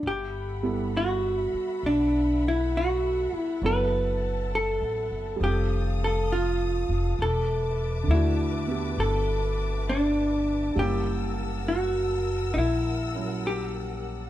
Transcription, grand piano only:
0, 0, Header, 1, 2, 480
1, 0, Start_track
1, 0, Key_signature, 1, "major"
1, 0, Tempo, 895522
1, 17, Time_signature, 4, 2, 24, 8
1, 7663, End_track
2, 0, Start_track
2, 0, Title_t, "Grand piano"
2, 0, Program_c, 0, 0
2, 114, Control_c, 0, 64, 127
2, 338, Note_on_c, 0, 55, 41
2, 339, Note_on_c, 0, 59, 39
2, 341, Note_on_c, 0, 64, 37
2, 347, Note_on_c, 0, 69, 46
2, 1942, Note_off_c, 0, 59, 0
2, 1943, Note_off_c, 0, 55, 0
2, 1944, Note_off_c, 0, 64, 0
2, 1945, Note_off_c, 0, 69, 0
2, 1946, Note_on_c, 0, 54, 53
2, 1950, Control_c, 0, 64, 0
2, 1950, Note_on_c, 0, 59, 43
2, 1953, Note_on_c, 0, 69, 57
2, 1954, Note_on_c, 0, 64, 46
2, 2046, Control_c, 0, 64, 127
2, 2874, Note_on_c, 0, 55, 44
2, 2895, Note_on_c, 0, 60, 40
2, 2902, Note_off_c, 0, 54, 0
2, 2904, Note_off_c, 0, 59, 0
2, 2906, Note_off_c, 0, 64, 0
2, 2906, Note_off_c, 0, 69, 0
2, 2907, Control_c, 0, 64, 0
2, 2917, Note_on_c, 0, 65, 38
2, 2934, Note_on_c, 0, 69, 46
2, 3007, Control_c, 0, 64, 127
2, 3842, Note_off_c, 0, 55, 0
2, 3853, Note_off_c, 0, 60, 0
2, 3863, Control_c, 0, 64, 0
2, 3864, Note_off_c, 0, 65, 0
2, 3872, Note_off_c, 0, 69, 0
2, 3958, Control_c, 0, 64, 127
2, 4307, Note_on_c, 0, 50, 48
2, 4328, Note_on_c, 0, 57, 42
2, 4347, Note_on_c, 0, 62, 46
2, 4365, Note_on_c, 0, 66, 53
2, 4649, Note_on_c, 0, 59, 39
2, 4658, Note_on_c, 0, 64, 34
2, 4665, Note_on_c, 0, 67, 44
2, 5757, Note_off_c, 0, 50, 0
2, 5764, Note_on_c, 0, 55, 43
2, 5767, Note_off_c, 0, 57, 0
2, 5769, Note_off_c, 0, 59, 0
2, 5770, Note_on_c, 0, 58, 39
2, 5773, Note_off_c, 0, 64, 0
2, 5777, Note_off_c, 0, 62, 0
2, 5777, Note_off_c, 0, 67, 0
2, 5777, Control_c, 0, 64, 0
2, 5780, Note_on_c, 0, 61, 36
2, 5786, Note_off_c, 0, 66, 0
2, 5790, Note_on_c, 0, 64, 46
2, 5879, Control_c, 0, 64, 127
2, 7040, Note_off_c, 0, 61, 0
2, 7047, Note_off_c, 0, 64, 0
2, 7048, Note_on_c, 0, 61, 37
2, 7055, Note_on_c, 0, 64, 34
2, 7065, Note_on_c, 0, 54, 40
2, 7663, Note_off_c, 0, 54, 0
2, 7663, Note_off_c, 0, 55, 0
2, 7663, Note_off_c, 0, 58, 0
2, 7663, Note_off_c, 0, 61, 0
2, 7663, Note_off_c, 0, 64, 0
2, 7663, End_track
0, 0, End_of_file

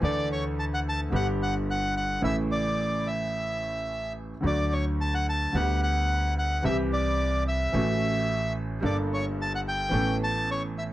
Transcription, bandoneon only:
0, 0, Header, 1, 2, 480
1, 0, Start_track
1, 0, Tempo, 549451
1, 26, Time_signature, 4, 2, 24, 8
1, 9546, End_track
2, 0, Start_track
2, 0, Title_t, "Bandoneon"
2, 0, Program_c, 0, 23
2, 31, Note_on_c, 0, 74, 81
2, 251, Note_off_c, 0, 74, 0
2, 281, Note_on_c, 0, 73, 76
2, 386, Note_off_c, 0, 73, 0
2, 516, Note_on_c, 0, 81, 74
2, 568, Note_off_c, 0, 81, 0
2, 647, Note_on_c, 0, 78, 81
2, 696, Note_off_c, 0, 78, 0
2, 776, Note_on_c, 0, 81, 81
2, 877, Note_off_c, 0, 81, 0
2, 1009, Note_on_c, 0, 78, 76
2, 1111, Note_off_c, 0, 78, 0
2, 1246, Note_on_c, 0, 78, 76
2, 1349, Note_off_c, 0, 78, 0
2, 1490, Note_on_c, 0, 78, 77
2, 1701, Note_off_c, 0, 78, 0
2, 1722, Note_on_c, 0, 78, 70
2, 1937, Note_off_c, 0, 78, 0
2, 1960, Note_on_c, 0, 76, 73
2, 2064, Note_off_c, 0, 76, 0
2, 2197, Note_on_c, 0, 74, 74
2, 2682, Note_on_c, 0, 76, 66
2, 2688, Note_off_c, 0, 74, 0
2, 3606, Note_off_c, 0, 76, 0
2, 3901, Note_on_c, 0, 74, 75
2, 4129, Note_on_c, 0, 73, 67
2, 4137, Note_off_c, 0, 74, 0
2, 4236, Note_off_c, 0, 73, 0
2, 4375, Note_on_c, 0, 81, 73
2, 4492, Note_off_c, 0, 81, 0
2, 4493, Note_on_c, 0, 78, 78
2, 4600, Note_off_c, 0, 78, 0
2, 4623, Note_on_c, 0, 81, 76
2, 4856, Note_on_c, 0, 78, 74
2, 4860, Note_off_c, 0, 81, 0
2, 5074, Note_off_c, 0, 78, 0
2, 5094, Note_on_c, 0, 78, 80
2, 5538, Note_off_c, 0, 78, 0
2, 5580, Note_on_c, 0, 78, 73
2, 5798, Note_off_c, 0, 78, 0
2, 5809, Note_on_c, 0, 76, 78
2, 5917, Note_off_c, 0, 76, 0
2, 6053, Note_on_c, 0, 74, 78
2, 6496, Note_off_c, 0, 74, 0
2, 6536, Note_on_c, 0, 76, 72
2, 7451, Note_off_c, 0, 76, 0
2, 7733, Note_on_c, 0, 74, 81
2, 7837, Note_off_c, 0, 74, 0
2, 7983, Note_on_c, 0, 73, 73
2, 8084, Note_off_c, 0, 73, 0
2, 8226, Note_on_c, 0, 81, 83
2, 8322, Note_off_c, 0, 81, 0
2, 8345, Note_on_c, 0, 78, 77
2, 8392, Note_off_c, 0, 78, 0
2, 8458, Note_on_c, 0, 79, 88
2, 8889, Note_off_c, 0, 79, 0
2, 8942, Note_on_c, 0, 81, 82
2, 9172, Note_off_c, 0, 81, 0
2, 9182, Note_on_c, 0, 73, 73
2, 9282, Note_off_c, 0, 73, 0
2, 9419, Note_on_c, 0, 76, 71
2, 9466, Note_off_c, 0, 76, 0
2, 9546, End_track
0, 0, End_of_file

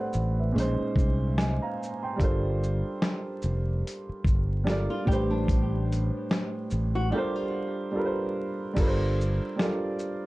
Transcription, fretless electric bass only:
0, 0, Header, 1, 3, 480
1, 0, Start_track
1, 0, Tempo, 821918
1, 1281, Time_signature, 4, 2, 24, 8
1, 5992, End_track
2, 0, Start_track
2, 0, Title_t, "Fretless electric bass"
2, 0, Program_c, 0, 35
2, 87, Note_on_c, 0, 33, 91
2, 311, Note_off_c, 0, 33, 0
2, 326, Note_on_c, 0, 34, 112
2, 457, Note_off_c, 0, 34, 0
2, 561, Note_on_c, 0, 36, 86
2, 921, Note_off_c, 0, 36, 0
2, 1286, Note_on_c, 0, 31, 109
2, 1643, Note_off_c, 0, 31, 0
2, 2008, Note_on_c, 0, 29, 85
2, 2231, Note_off_c, 0, 29, 0
2, 2482, Note_on_c, 0, 31, 84
2, 2841, Note_off_c, 0, 31, 0
2, 2965, Note_on_c, 0, 33, 98
2, 3561, Note_off_c, 0, 33, 0
2, 3925, Note_on_c, 0, 33, 83
2, 4150, Note_off_c, 0, 33, 0
2, 5123, Note_on_c, 0, 31, 101
2, 5482, Note_off_c, 0, 31, 0
2, 5992, End_track
3, 0, Start_track
3, 0, Title_t, "Muted fretless electric bass strokes"
3, 468, Note_on_c, 9, 29, 47
3, 527, Note_off_c, 9, 29, 0
3, 2390, Note_on_c, 9, 29, 48
3, 2449, Note_off_c, 9, 29, 0
3, 5992, End_track
0, 0, End_of_file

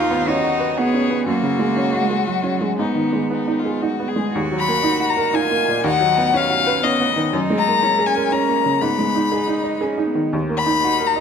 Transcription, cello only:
0, 0, Header, 1, 2, 480
1, 0, Start_track
1, 0, Key_signature, -6, "minor"
1, 0, Tempo, 499168
1, 1215, Time_signature, 3, 2, 24, 8
1, 2178, Tempo, 515907
1, 4578, Tempo, 499168
1, 10692, End_track
2, 0, Start_track
2, 0, Title_t, "Cello"
2, 0, Program_c, 0, 42
2, 0, Note_on_c, 0, 65, 107
2, 267, Note_on_c, 0, 63, 94
2, 282, Note_off_c, 0, 65, 0
2, 757, Note_on_c, 0, 59, 86
2, 771, Note_off_c, 0, 63, 0
2, 1225, Note_off_c, 0, 59, 0
2, 1230, Note_on_c, 0, 58, 89
2, 1938, Note_on_c, 0, 56, 74
2, 1953, Note_off_c, 0, 58, 0
2, 2171, Note_on_c, 0, 54, 63
2, 2185, Note_off_c, 0, 56, 0
2, 2655, Note_off_c, 0, 54, 0
2, 2660, Note_on_c, 0, 59, 65
2, 3607, Note_off_c, 0, 59, 0
2, 4097, Note_on_c, 0, 66, 79
2, 5058, Note_on_c, 0, 65, 81
2, 5073, Note_off_c, 0, 66, 0
2, 5529, Note_off_c, 0, 65, 0
2, 5535, Note_on_c, 0, 63, 93
2, 6017, Note_on_c, 0, 61, 81
2, 6032, Note_off_c, 0, 63, 0
2, 6487, Note_on_c, 0, 59, 77
2, 6501, Note_off_c, 0, 61, 0
2, 6967, Note_off_c, 0, 59, 0
2, 6987, Note_on_c, 0, 63, 92
2, 7445, Note_on_c, 0, 61, 74
2, 7459, Note_off_c, 0, 63, 0
2, 8397, Note_off_c, 0, 61, 0
2, 8406, Note_on_c, 0, 59, 56
2, 8830, Note_off_c, 0, 59, 0
2, 8889, Note_on_c, 0, 63, 67
2, 9368, Note_on_c, 0, 61, 58
2, 9383, Note_off_c, 0, 63, 0
2, 9601, Note_on_c, 0, 59, 55
2, 9615, Note_off_c, 0, 61, 0
2, 9850, Note_off_c, 0, 59, 0
2, 10315, Note_on_c, 0, 63, 71
2, 10692, Note_off_c, 0, 63, 0
2, 10692, End_track
0, 0, End_of_file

